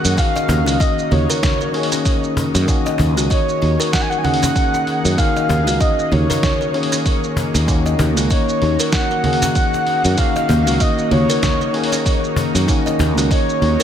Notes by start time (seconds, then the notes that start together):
Already playing: D#3 A#3 C#4 F#4 G#4 D#5 F#5
0.05 F#2, open hi-hat, shaker
0.16 D#3 A#3 C#4 D#4 F5, kick, open hi-hat, shaker
0.21 F#4
0.36 D#5, cajon slap, shaker
0.48 D#2 C#4, cajon bass, cajon slap, open hi-hat
0.67 C#2 F#4, open hi-hat, shaker
0.80 D#5, kick, open hi-hat, shaker
0.99 shaker
1.11 D#2 D#4 C#5, open hi-hat, low conga
1.30 A#4, open hi-hat, shaker
1.43 kick, snare, open hi-hat, low conga, shaker
1.61 A#4, shaker
1.72 D#3 A#3 C#4, open hi-hat
1.77 G#4
1.83 open hi-hat
1.92 C#4, cajon slap, open hi-hat, shaker
2.05 kick, open hi-hat, shaker
2.24 shaker
2.37 cajon bass, open hi-hat
2.55 F#2, cajon slap, open hi-hat, shaker
2.66 D#3 A#3 C#4 D#4 F#4 G#4, kick, open hi-hat, shaker
2.86 D#5, cajon slap, shaker
2.98 D#2 C#4, cajon bass, cajon slap, open hi-hat
3.17 C#2 F#4, open hi-hat, shaker
3.30 C#5 D#5, kick, open hi-hat, shaker
3.49 shaker
3.62 D#2 D#4, open hi-hat
3.80 A#4, open hi-hat, shaker
3.92 F#5, kick, snare, open hi-hat, shaker
4.01 G#5
4.09 A#4 F#5, shaker
4.18 G#5
4.23 D#3 A#3 C#4 F#5, open hi-hat, low conga
4.27 G#4
4.34 open hi-hat
4.43 C#4, cajon bass, open hi-hat, shaker
4.56 kick, open hi-hat, shaker
4.74 cajon slap, shaker
4.87 cajon slap, open hi-hat
5.05 F#2, open hi-hat, shaker
5.17 D#3 A#3 C#4 D#4 F#4 F5, kick, open hi-hat, shaker
5.36 D#5, cajon slap, shaker
5.49 D#2 C#4, cajon bass, cajon slap, open hi-hat
5.67 C#2 F#4, open hi-hat, shaker
5.80 D#5, kick, open hi-hat, shaker
5.99 shaker
6.12 D#2 D#4 C#5, open hi-hat, low conga
6.30 A#4, cajon bass, open hi-hat, shaker
6.43 kick, snare, open hi-hat, low conga, shaker
6.61 A#4, shaker
6.73 D#3 A#3 C#4, open hi-hat
6.77 G#4
6.83 open hi-hat
6.92 C#4, cajon slap, open hi-hat, shaker
7.06 kick, open hi-hat, shaker
7.24 shaker
7.37 cajon bass, open hi-hat
7.54 D#2, cajon slap, open hi-hat, shaker
7.67 D#3 A#3 C#4 D#4 F#4, kick, open hi-hat, shaker
7.86 D#5, cajon slap, shaker
7.99 D#2 A#3, cajon bass, cajon slap, open hi-hat
8.17 C#2 F#4, open hi-hat, shaker
8.30 C#5 D#5, kick, open hi-hat, shaker
8.49 shaker
8.62 D#2 D#4, open hi-hat
8.80 A#4, open hi-hat, shaker
8.93 F#5, kick, snare, open hi-hat, shaker
9.11 A#4, shaker
9.23 D#3 A#3 C#4 G#4 F#5, open hi-hat, low conga
9.33 open hi-hat
9.42 C#4, cajon bass, open hi-hat, shaker
9.55 kick, open hi-hat, shaker
9.73 cajon slap, shaker
9.87 cajon slap, open hi-hat
10.05 F#2, open hi-hat, shaker
10.16 D#3 A#3 C#4 D#4 F#4 F5, kick, open hi-hat, shaker
10.36 D#5, cajon slap, shaker
10.49 D#2 A#3, cajon bass, cajon slap, open hi-hat
10.67 C#2 F#4, open hi-hat, shaker
10.80 D#5, kick, open hi-hat, shaker
10.98 shaker
11.11 D#2 D#4 C#5, open hi-hat, low conga
11.30 A#4, open hi-hat, shaker
11.43 kick, snare, open hi-hat, low conga, shaker
11.61 A#4, shaker
11.72 D#3 A#3 C#4 G#4, open hi-hat
11.84 open hi-hat
11.92 C#4, cajon slap, open hi-hat, shaker
12.06 kick, open hi-hat, shaker
12.24 shaker
12.36 cajon bass, open hi-hat
12.55 F#2, cajon slap, open hi-hat, shaker
12.66 D#3 A#3 C#4 D#4 A#4, kick, open hi-hat, shaker
12.70 F#4
12.86 D#5, cajon slap, shaker
12.99 D#2 A#3, cajon bass, cajon slap, open hi-hat
13.17 C#2 F#4, open hi-hat, shaker
13.31 C#5 D#5, kick, open hi-hat, shaker
13.49 shaker
13.62 D#2 D#4, open hi-hat
13.80 A#4